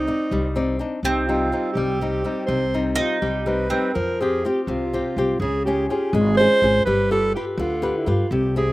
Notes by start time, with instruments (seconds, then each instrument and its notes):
Already playing: alto saxophone D#4, mandolin D#4
0.07 nylon-string guitar C4 D#4 D5
0.31 upright bass C2, nylon-string guitar G3
0.56 nylon-string guitar C4 D#4 D5
0.79 nylon-string guitar C4 D4 D#4
1.03 upright bass C2, nylon-string guitar C3, mandolin C4, alto saxophone D#4
1.27 nylon-string guitar G3 C4 D#4, alto saxophone F4
1.52 nylon-string guitar G3 C4 D#4
1.72 upright bass C2, alto saxophone G4
1.77 nylon-string guitar G3
2.01 nylon-string guitar G3 C4 D#4
2.24 nylon-string guitar G3 C4 D#4
2.46 upright bass C2, nylon-string guitar C3, alto saxophone C5
2.74 nylon-string guitar G3 C4 D#4
2.95 nylon-string guitar G3 C4 D#4, mandolin D#4, alto saxophone F4
3.22 upright bass C2, nylon-string guitar G3, alto saxophone G4
3.46 nylon-string guitar G3 C4 D#4, alto saxophone B4
3.70 nylon-string guitar G3 C4 D#4, mandolin C4
3.94 upright bass F2, nylon-string guitar F3, alto saxophone A#4
4.20 nylon-string guitar C4 F4 G4, alto saxophone G#4
4.45 nylon-string guitar C4 F4 G4, alto saxophone G4
4.63 alto saxophone G4
4.67 upright bass C2, nylon-string guitar C3, alto saxophone F4
4.93 nylon-string guitar C4 F4 G4
5.16 upright bass C2, nylon-string guitar C4 F4 G4
5.40 upright bass C#2, nylon-string guitar C#3, alto saxophone G#4
5.65 nylon-string guitar C#4 F4 G#4, alto saxophone G4
5.88 nylon-string guitar C#4 F4 G#4, alto saxophone G4
6.13 upright bass G#1, nylon-string guitar G#3, alto saxophone G#4
6.37 nylon-string guitar C#4 F4 G#4, alto saxophone C5
6.62 upright bass G#1, nylon-string guitar C#4 F4 G#4
6.85 upright bass G1, nylon-string guitar G3, alto saxophone B4
7.11 nylon-string guitar F4 G4 B4, alto saxophone A4
7.35 nylon-string guitar F4 G4 B4, alto saxophone G4
7.57 upright bass D2, nylon-string guitar D3, alto saxophone F4
7.82 nylon-string guitar F4 G4 B4
7.97 alto saxophone E4
8.06 upright bass G2, nylon-string guitar F4 G4 B4
8.11 alto saxophone F4
8.31 upright bass C2, nylon-string guitar C3, alto saxophone G4
8.56 nylon-string guitar C4 E4 G4, alto saxophone G#4